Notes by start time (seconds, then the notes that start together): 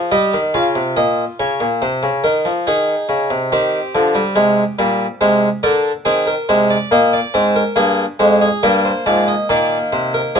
Already playing: F3
0.12 G3 G4 D#5
0.34 D#3
0.54 C#3 F4 F5
0.75 C3
0.97 A#2 D#5
1.39 C#3 C#5
1.60 A#2
1.82 C3 C5
2.03 C#3
2.24 D#3 A#4
2.45 F3
2.67 D#3 D#4 G#4
3.09 C#3
3.30 C3
3.52 D#3 C4 G4
3.95 D3 F3
4.15 G3
4.35 C3 G#3
4.79 A#2 G3
5.21 C3 G#3 C5
5.63 D3 D4 A#4
6.05 D#3 C4 G#4
6.27 A#4
6.49 C3 G#3 C5
6.70 D5
6.91 A#2 A#3 D#5
7.13 D5
7.34 G#2 C4 C5
7.56 A#4
7.76 G2 A#3 G#4
8.19 F2 G#3 C5
8.41 G#4
8.63 G2 G3 A#3 A#4
8.85 C5
9.06 G#2 F3 D5
9.28 D#5
9.49 A#2 D#3 A#3 D5
9.93 C3 C5
10.14 A#4
10.35 G#2 F3 C4 G#4